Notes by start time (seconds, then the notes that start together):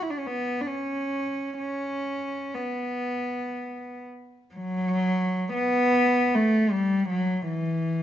0.02 E4
0.10 D4
0.18 C#4
0.27 B3
0.61 D4
0.67 C#4
1.58 C#4
2.54 B3
4.55 F#3
5.53 B3
6.35 A3
6.71 G3
7.10 F#3
7.48 E3